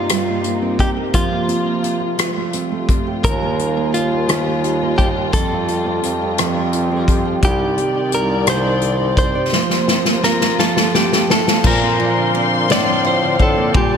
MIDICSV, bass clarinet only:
0, 0, Header, 1, 2, 480
1, 0, Start_track
1, 0, Key_signature, -2, "major"
1, 0, Tempo, 700117
1, 782, Time_signature, 6, 3, 24, 8
1, 9578, End_track
2, 0, Start_track
2, 0, Title_t, "Bass clarinet"
2, 0, Program_c, 0, 71
2, 2218, Note_on_c, 0, 39, 88
2, 2673, Note_off_c, 0, 39, 0
2, 2702, Note_on_c, 0, 39, 83
2, 3631, Note_off_c, 0, 39, 0
2, 3655, Note_on_c, 0, 41, 81
2, 4108, Note_off_c, 0, 41, 0
2, 4133, Note_on_c, 0, 41, 91
2, 5063, Note_off_c, 0, 41, 0
2, 5092, Note_on_c, 0, 36, 92
2, 5368, Note_off_c, 0, 36, 0
2, 5566, Note_on_c, 0, 36, 88
2, 6501, Note_off_c, 0, 36, 0
2, 7981, Note_on_c, 0, 46, 94
2, 8677, Note_off_c, 0, 46, 0
2, 8706, Note_on_c, 0, 45, 84
2, 9158, Note_off_c, 0, 45, 0
2, 9182, Note_on_c, 0, 45, 84
2, 9409, Note_off_c, 0, 45, 0
2, 9421, Note_on_c, 0, 46, 96
2, 9578, Note_off_c, 0, 46, 0
2, 9578, End_track
0, 0, End_of_file